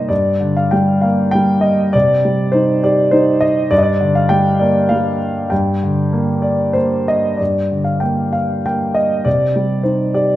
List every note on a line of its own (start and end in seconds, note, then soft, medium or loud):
0.00 0.13 C3 soft
0.00 0.12 G3 soft
0.00 0.12 A#3 soft
0.00 0.12 D#4 soft
0.00 0.12 C5 medium
0.00 0.09 D5 medium
0.00 0.13 D#5 medium
0.09 1.90 G2 soft
0.09 0.53 D5 medium
0.40 1.60 D3 soft
0.57 0.73 F5 medium
0.71 1.34 G3 soft
0.71 1.04 G5 medium
1.01 1.92 A#3 soft
1.01 1.34 F5 medium
1.31 1.93 G3 soft
1.31 1.64 G5 medium
1.61 1.91 D#5 medium
1.93 3.67 C3 soft
1.93 2.49 D5 medium
2.25 3.39 G3 soft
2.52 3.11 D#4 soft
2.52 2.84 C5 medium
2.84 3.69 G4 soft
2.84 3.11 D5 medium
3.11 3.69 D#4 soft
3.11 3.42 C5 medium
3.41 3.71 D#5 medium
3.71 5.47 G2 medium
3.71 3.78 D5 medium
3.78 3.85 D#5 medium
3.83 4.16 D5 medium
4.01 5.17 D3 soft
4.15 4.31 F5 medium
4.29 4.90 G3 soft
4.29 4.61 G5 medium
4.59 5.48 A#3 soft
4.59 4.91 D5 medium
4.89 5.49 G3 soft
4.89 5.52 F5 medium
5.50 7.36 G2 soft
5.50 6.71 G5 medium
5.83 7.05 D3 soft
6.13 6.74 A#3 soft
6.42 6.76 D5 medium
6.73 7.38 A#3 soft
6.73 7.05 C5 medium
7.08 7.41 D#5 medium
7.37 9.23 G2 soft
7.37 7.82 D5 soft
7.71 8.92 D3 soft
7.84 8.00 F5 soft
8.00 8.64 A#3 soft
8.00 8.34 G5 medium
8.33 8.65 F5 soft
8.66 9.25 A#3 soft
8.66 8.97 G5 medium
8.95 9.23 D#5 medium
9.25 10.36 C3 soft
9.25 9.81 D5 medium
9.56 10.36 G3 soft
9.83 10.36 D#4 soft
9.83 10.15 C5 soft
10.14 10.36 G4 soft
10.14 10.36 D5 medium